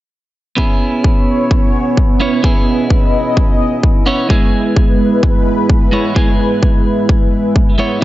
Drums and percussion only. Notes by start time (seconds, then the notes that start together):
0.58 kick
1.04 kick
1.51 kick
1.97 kick
2.44 kick
2.90 kick
3.37 kick
3.83 kick
4.30 kick
4.76 kick
5.23 kick
5.69 kick
6.16 kick
6.63 kick
7.09 kick
7.56 kick